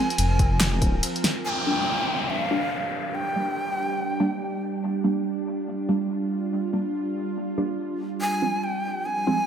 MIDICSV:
0, 0, Header, 1, 7, 480
1, 0, Start_track
1, 0, Tempo, 422535
1, 1648, Time_signature, 4, 2, 24, 8
1, 10756, End_track
2, 0, Start_track
2, 0, Title_t, "Shakuhachi"
2, 0, Program_c, 0, 77
2, 0, Note_on_c, 0, 80, 104
2, 1170, Note_off_c, 0, 80, 0
2, 1645, Note_on_c, 0, 80, 101
2, 1700, Note_on_c, 0, 79, 110
2, 1712, Note_off_c, 0, 80, 0
2, 2611, Note_on_c, 0, 76, 101
2, 2628, Note_off_c, 0, 79, 0
2, 2747, Note_off_c, 0, 76, 0
2, 2747, Note_on_c, 0, 77, 101
2, 3574, Note_on_c, 0, 79, 97
2, 3591, Note_off_c, 0, 77, 0
2, 5251, Note_off_c, 0, 79, 0
2, 9332, Note_on_c, 0, 80, 105
2, 9811, Note_on_c, 0, 79, 99
2, 9828, Note_off_c, 0, 80, 0
2, 10288, Note_on_c, 0, 80, 106
2, 10305, Note_off_c, 0, 79, 0
2, 10756, Note_off_c, 0, 80, 0
2, 10756, End_track
3, 0, Start_track
3, 0, Title_t, "Synth drone"
3, 0, Program_c, 1, 95
3, 0, Note_on_c, 1, 53, 85
3, 0, Note_on_c, 1, 60, 73
3, 0, Note_on_c, 1, 70, 92
3, 1602, Note_off_c, 1, 60, 0
3, 1603, Note_off_c, 1, 70, 0
3, 1606, Note_off_c, 1, 53, 0
3, 1652, Note_on_c, 1, 55, 82
3, 1652, Note_on_c, 1, 62, 70
3, 1653, Note_on_c, 1, 67, 86
3, 5452, Note_off_c, 1, 67, 0
3, 5488, Note_on_c, 1, 65, 84
3, 9285, Note_off_c, 1, 55, 0
3, 9285, Note_off_c, 1, 62, 0
3, 9290, Note_off_c, 1, 65, 0
3, 9327, Note_on_c, 1, 53, 79
3, 9328, Note_on_c, 1, 55, 88
3, 9331, Note_on_c, 1, 60, 71
3, 10756, Note_off_c, 1, 53, 0
3, 10756, Note_off_c, 1, 55, 0
3, 10756, Note_off_c, 1, 60, 0
3, 10756, End_track
4, 0, Start_track
4, 0, Title_t, "Synth stab"
4, 0, Program_c, 2, 62
4, 1889, Note_on_c, 2, 58, 73
4, 1890, Note_on_c, 2, 55, 78
4, 1890, Note_on_c, 2, 62, 87
4, 1996, Note_off_c, 2, 58, 0
4, 1997, Note_off_c, 2, 55, 0
4, 1997, Note_off_c, 2, 62, 0
4, 2850, Note_on_c, 2, 55, 95
4, 2850, Note_on_c, 2, 58, 87
4, 2851, Note_on_c, 2, 62, 107
4, 2956, Note_off_c, 2, 58, 0
4, 2957, Note_off_c, 2, 55, 0
4, 2957, Note_off_c, 2, 62, 0
4, 3811, Note_on_c, 2, 58, 70
4, 3812, Note_on_c, 2, 55, 77
4, 3812, Note_on_c, 2, 62, 89
4, 3917, Note_off_c, 2, 58, 0
4, 3918, Note_off_c, 2, 55, 0
4, 3918, Note_off_c, 2, 62, 0
4, 4770, Note_on_c, 2, 55, 96
4, 4770, Note_on_c, 2, 58, 87
4, 4770, Note_on_c, 2, 62, 105
4, 4877, Note_off_c, 2, 55, 0
4, 4877, Note_off_c, 2, 58, 0
4, 4877, Note_off_c, 2, 62, 0
4, 5728, Note_on_c, 2, 55, 83
4, 5728, Note_on_c, 2, 62, 85
4, 5729, Note_on_c, 2, 58, 74
4, 5835, Note_off_c, 2, 62, 0
4, 5836, Note_off_c, 2, 55, 0
4, 5836, Note_off_c, 2, 58, 0
4, 6689, Note_on_c, 2, 55, 97
4, 6689, Note_on_c, 2, 62, 101
4, 6690, Note_on_c, 2, 58, 88
4, 6796, Note_off_c, 2, 55, 0
4, 6796, Note_off_c, 2, 62, 0
4, 6797, Note_off_c, 2, 58, 0
4, 7648, Note_on_c, 2, 55, 83
4, 7648, Note_on_c, 2, 58, 69
4, 7648, Note_on_c, 2, 62, 83
4, 7755, Note_off_c, 2, 62, 0
4, 7756, Note_off_c, 2, 55, 0
4, 7756, Note_off_c, 2, 58, 0
4, 8608, Note_on_c, 2, 58, 90
4, 8608, Note_on_c, 2, 62, 105
4, 8609, Note_on_c, 2, 55, 98
4, 8716, Note_off_c, 2, 55, 0
4, 8716, Note_off_c, 2, 58, 0
4, 8716, Note_off_c, 2, 62, 0
4, 9566, Note_on_c, 2, 53, 83
4, 9566, Note_on_c, 2, 60, 86
4, 9567, Note_on_c, 2, 56, 74
4, 9675, Note_off_c, 2, 53, 0
4, 9675, Note_off_c, 2, 56, 0
4, 9675, Note_off_c, 2, 60, 0
4, 10530, Note_on_c, 2, 53, 97
4, 10531, Note_on_c, 2, 56, 93
4, 10531, Note_on_c, 2, 60, 107
4, 10637, Note_off_c, 2, 53, 0
4, 10637, Note_off_c, 2, 56, 0
4, 10637, Note_off_c, 2, 60, 0
4, 10756, End_track
5, 0, Start_track
5, 0, Title_t, "Detuned saw bass"
5, 0, Program_c, 3, 39
5, 210, Note_on_c, 3, 29, 96
5, 1154, Note_off_c, 3, 29, 0
5, 10756, End_track
6, 0, Start_track
6, 0, Title_t, "Downlifter"
6, 0, Program_c, 4, 103
6, 1649, Note_on_c, 4, 60, 66
6, 5489, Note_off_c, 4, 60, 0
6, 10756, End_track
7, 0, Start_track
7, 0, Title_t, "Drums"
7, 118, Note_on_c, 9, 42, 42
7, 209, Note_off_c, 9, 42, 0
7, 209, Note_on_c, 9, 42, 80
7, 209, Note_on_c, 9, 51, 45
7, 323, Note_off_c, 9, 42, 0
7, 323, Note_off_c, 9, 51, 0
7, 447, Note_on_c, 9, 42, 53
7, 449, Note_on_c, 9, 36, 58
7, 560, Note_off_c, 9, 42, 0
7, 563, Note_off_c, 9, 36, 0
7, 688, Note_on_c, 9, 38, 121
7, 688, Note_on_c, 9, 39, 88
7, 688, Note_on_c, 9, 42, 86
7, 688, Note_on_c, 9, 51, 63
7, 801, Note_off_c, 9, 38, 0
7, 801, Note_off_c, 9, 39, 0
7, 801, Note_off_c, 9, 42, 0
7, 801, Note_off_c, 9, 51, 0
7, 928, Note_on_c, 9, 42, 60
7, 929, Note_on_c, 9, 36, 65
7, 1042, Note_off_c, 9, 42, 0
7, 1043, Note_off_c, 9, 36, 0
7, 1170, Note_on_c, 9, 42, 85
7, 1170, Note_on_c, 9, 51, 47
7, 1283, Note_off_c, 9, 42, 0
7, 1283, Note_off_c, 9, 51, 0
7, 1316, Note_on_c, 9, 42, 42
7, 1410, Note_on_c, 9, 38, 92
7, 1410, Note_on_c, 9, 46, 94
7, 1430, Note_off_c, 9, 42, 0
7, 1524, Note_off_c, 9, 38, 0
7, 1524, Note_off_c, 9, 46, 0
7, 10756, End_track
0, 0, End_of_file